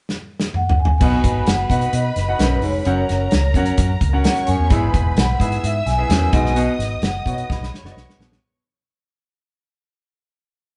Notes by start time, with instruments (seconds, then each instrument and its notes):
0.09 snare
0.40 snare
0.54 vibraphone F#5, mid tom
0.69 floor tom
0.80 vibraphone G#5
0.85 floor tom
1.00 fingered electric bass B1, baritone saxophone B2, grand piano B2 D#4 F#4 B4 F#5, violin section B4 B5, kick, crash
1.24 fingered electric bass G#1, kick, closed hi-hat
1.46 fingered electric bass F#1, vibraphone F#5, snare, closed hi-hat
1.70 fingered electric bass B2, grand piano D#4 F#4 B4 F#5, kick, closed hi-hat
1.81 closed hi-hat
1.93 fingered electric bass B2, vibraphone D#5, closed hi-hat
2.16 fingered electric bass F#1, snare, closed hi-hat
2.28 grand piano D#4 F#4 B4 F#5
2.39 fingered electric bass B1, baritone saxophone F#2, vibraphone B4, snare, closed hi-hat
2.62 fingered electric bass F1, baritone saxophone G#2, vibraphone C#5, open hi-hat
2.85 fingered electric bass F#1, baritone saxophone F#2, grand piano C#4 F#4 A#4 F#5, violin section A#4 A#5, vibraphone C#5, closed hi-hat
3.09 fingered electric bass F#1, snare, closed hi-hat
3.31 fingered electric bass C#2, snare, closed hi-hat
3.54 fingered electric bass F#2, grand piano C#4 F#4 A#4 F#5, kick, closed hi-hat
3.65 closed hi-hat
3.77 fingered electric bass F#2, kick, closed hi-hat
4.01 fingered electric bass C#2, kick, closed hi-hat
4.13 grand piano C#4 F#4 A#4 F#5
4.24 violin section C#5 C#6, vibraphone F#5, snare, closed hi-hat
4.36 closed hi-hat
4.46 baritone saxophone F#2, fingered electric bass F#2, vibraphone G#5, closed hi-hat
4.60 fingered electric bass E2
4.69 fingered electric bass G#1, baritone saxophone E2, grand piano G#2 B3 E4 G#4 E5, violin section B4 B5, kick, closed hi-hat
4.94 fingered electric bass E1, kick, closed hi-hat
5.17 fingered electric bass B1, vibraphone F#5, snare, closed hi-hat
5.39 fingered electric bass G#2, grand piano B3 E4 G#4 E5, violin section E5 E6, kick, closed hi-hat
5.52 closed hi-hat
5.63 fingered electric bass G#2, vibraphone E5, closed hi-hat
5.86 fingered electric bass B1, vibraphone G#5, snare, closed hi-hat
5.98 grand piano B3 E4 G#4 E5
6.09 fingered electric bass E2, baritone saxophone F#2, snare, closed hi-hat
6.32 fingered electric bass B1, baritone saxophone G#2, grand piano B2 B3 D#4 F#4 D#5, violin section D#5 D#6, kick, closed hi-hat
6.45 snare
6.56 baritone saxophone B2, vibraphone D#5, closed hi-hat
6.79 fingered electric bass G#1, snare, closed hi-hat
7.02 fingered electric bass F#1, vibraphone F#5, snare, closed hi-hat
7.26 fingered electric bass B2, grand piano B3 D#4 F#4 C#5, kick, closed hi-hat
7.33 grand piano D#5
7.38 closed hi-hat
7.50 fingered electric bass B1, vibraphone B5, kick, snare
7.60 fingered electric bass B1, snare
7.73 violin section C#5 C#6, snare
7.83 fingered electric bass F#1, grand piano B3 D#4 F#4 D5, snare
7.92 grand piano D#5
7.96 fingered electric bass B1, snare
8.09 snare
8.19 fingered electric bass A#1, baritone saxophone B2, snare
8.32 snare